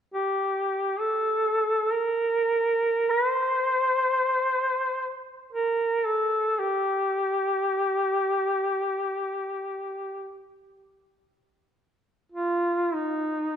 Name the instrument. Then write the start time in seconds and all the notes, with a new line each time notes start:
duduk
0.14 G4
1.00 A4
1.92 A#4
3.10 B4
3.28 C5
5.53 A#4
6.06 A4
6.59 G4
12.32 F4
12.94 D#4